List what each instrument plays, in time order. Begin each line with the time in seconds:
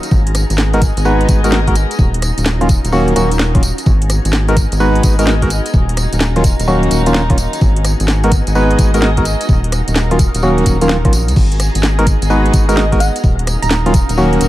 Already playing: string section D#4 A#4, string machine A#5
0.03 closed hi-hat, tambourine
0.11 analog synth bass G#1, string machine B3 D#4 F#4, string section G#4, kick, tambourine
0.27 closed hi-hat
0.35 cross-stick, closed hi-hat, tambourine
0.50 analog synth bass G#1, closed hi-hat, tambourine
0.58 snare
0.74 synth stab G#3 B3 D#4 F#4 A#4, string section D#5, closed hi-hat
0.82 kick, closed hi-hat, tambourine
0.97 analog synth bass G#1, closed hi-hat, tambourine
1.05 synth stab G#3 B3 D#4 F#4 B4, tambourine
1.21 closed hi-hat
1.28 analog synth bass G#1, kick, closed hi-hat, tambourine
1.44 synth stab G#3 B3 D#4 F#4 A#4, closed hi-hat, tambourine
1.52 snare, tambourine
1.67 synth stab G#3 B3 D#4 F#4 A#4, kick, closed hi-hat
1.75 closed hi-hat, tambourine
1.91 closed hi-hat, tambourine
1.99 analog synth bass D#1, string machine C#4 F4 F#4, string section D#4, kick, tambourine
2.14 closed hi-hat
2.22 cross-stick, closed hi-hat, tambourine
2.38 analog synth bass D#1, closed hi-hat, tambourine
2.46 snare
2.53 string section A#4
2.61 synth stab D#3 F#3 A#3 C#4 F4, closed hi-hat
2.69 kick, closed hi-hat, tambourine
2.84 analog synth bass D#1, closed hi-hat, tambourine
2.92 synth stab D#3 F#3 A#3 C#4 F#4, tambourine
3.08 closed hi-hat
3.16 analog synth bass D#1, synth stab D#3 F#3 A#3 C#4 F#4, closed hi-hat, tambourine
3.31 closed hi-hat, tambourine
3.39 snare, tambourine
3.55 synth stab D#3 F#3 A#3 C#4 F4, kick, cross-stick, closed hi-hat
3.63 closed hi-hat, tambourine
3.78 closed hi-hat, tambourine
3.86 analog synth bass G#1, string machine B3 D#4 A#5, string section G#4, kick, tambourine
4.02 closed hi-hat
4.10 cross-stick, closed hi-hat, tambourine
4.25 analog synth bass G#1, closed hi-hat, tambourine
4.33 snare, tambourine
4.48 synth stab G#3 B3 D#4 F#4 A#4, string section D#5, closed hi-hat
4.57 kick, closed hi-hat, tambourine
4.72 analog synth bass G#1, closed hi-hat, tambourine
4.80 synth stab G#3 B3 D#4 F#4 B4, tambourine
4.95 closed hi-hat
5.03 analog synth bass G#1, kick, closed hi-hat, tambourine
5.19 synth stab G#3 B3 D#4 F#4 A#4, closed hi-hat, tambourine
5.27 snare, tambourine
5.42 synth stab G#3 B3 D#4 F#4 A#4, kick, closed hi-hat
5.50 closed hi-hat, tambourine
5.66 closed hi-hat, tambourine
5.74 analog synth bass D#1, string machine C#4 F5, string section D#4, kick, tambourine
5.89 closed hi-hat
5.97 cross-stick, closed hi-hat, tambourine
6.13 analog synth bass D#1, closed hi-hat, tambourine
6.21 snare, tambourine
6.36 synth stab D#3 F#3 A#3 C#4 F4, closed hi-hat
6.44 kick, closed hi-hat, tambourine
6.59 analog synth bass D#1, string section A#4, closed hi-hat, tambourine
6.68 synth stab D#3 F#3 A#3 C#4 F#4, tambourine
6.83 closed hi-hat
6.91 analog synth bass D#1, closed hi-hat, tambourine
7.06 synth stab D#3 F#3 A#3 C#4 F4, closed hi-hat, tambourine
7.14 snare, tambourine
7.30 synth stab D#3 F#3 A#3 C#4 F4, kick, cross-stick, closed hi-hat
7.38 closed hi-hat, tambourine
7.53 closed hi-hat, tambourine
7.61 analog synth bass G#1, string machine B3 D#4 A#5, string section G#4, kick, tambourine
7.76 closed hi-hat
7.85 cross-stick, closed hi-hat, tambourine
8.00 analog synth bass G#1, closed hi-hat, tambourine
8.08 snare, tambourine
8.24 synth stab G#3 B3 D#4 F#4 A#4, closed hi-hat
8.32 kick, closed hi-hat, tambourine
8.36 string section D#5
8.47 analog synth bass G#1, closed hi-hat, tambourine
8.55 synth stab G#3 B3 D#4 F#4 B4, tambourine
8.71 closed hi-hat
8.79 analog synth bass G#1, kick, closed hi-hat, tambourine
8.94 synth stab G#3 B3 D#4 F#4 A#4, closed hi-hat, tambourine
9.02 snare, tambourine
9.17 synth stab G#3 B3 D#4 F#4 A#4, kick, closed hi-hat
9.25 closed hi-hat, tambourine
9.41 closed hi-hat, tambourine
9.49 analog synth bass D#1, string machine C#4 F5, string section D#4, kick, tambourine
9.64 closed hi-hat
9.72 cross-stick, closed hi-hat, tambourine
9.81 string section A#4
9.88 analog synth bass D#1, closed hi-hat, tambourine
9.96 snare, tambourine
10.11 synth stab D#3 F#3 A#3 C#4 F4, closed hi-hat
10.19 kick, closed hi-hat, tambourine
10.34 analog synth bass D#1, closed hi-hat, tambourine
10.43 synth stab D#3 F#3 A#3 C#4 F#4, tambourine
10.58 closed hi-hat
10.66 analog synth bass D#1, kick, closed hi-hat, tambourine
10.81 synth stab D#3 F#3 A#3 C#4 F4, closed hi-hat, tambourine
10.89 snare, tambourine
11.05 analog synth bass A#1, synth stab D#3 F#3 A#3 C#4 F4, kick, cross-stick, closed hi-hat
11.13 analog synth bass A#1, closed hi-hat, tambourine
11.28 analog synth bass C#2, closed hi-hat, tambourine
11.36 analog synth bass G#1, string machine B3 D#4, string section G#4, kick, crash, tambourine
11.52 closed hi-hat
11.58 string section D#5, cross-stick, closed hi-hat, tambourine
11.75 analog synth bass G#1, closed hi-hat, tambourine
11.83 snare, tambourine
11.99 synth stab G#3 B3 D#4 F#4 A#4, closed hi-hat
12.07 kick, closed hi-hat, tambourine
12.22 analog synth bass G#1, closed hi-hat, tambourine
12.30 synth stab G#3 B3 D#4 F#4 B4, tambourine
12.46 closed hi-hat
12.53 analog synth bass G#1, kick, closed hi-hat, tambourine
12.69 synth stab G#3 B3 D#4 F#4 A#4, closed hi-hat, tambourine
12.77 synth pluck D#5, snare, tambourine
12.92 synth stab G#3 B3 D#4 F#4 A#4, kick, closed hi-hat
13.00 synth pluck F#5, closed hi-hat, tambourine
13.16 closed hi-hat, tambourine
13.24 analog synth bass D#1, string machine C#4 F#4 F5, string section D#4, kick, tambourine
13.39 closed hi-hat
13.47 cross-stick, closed hi-hat, tambourine
13.52 string section A#4
13.62 analog synth bass D#1, synth pluck A#5, closed hi-hat, tambourine
13.71 snare, tambourine
13.86 synth stab D#3 F#3 A#3 C#4 F4, closed hi-hat
13.94 kick, closed hi-hat, tambourine
14.09 analog synth bass D#1, closed hi-hat, tambourine
14.17 synth stab D#3 F#3 A#3 C#4 F#4, tambourine
14.33 closed hi-hat
14.41 analog synth bass D#1, closed hi-hat, tambourine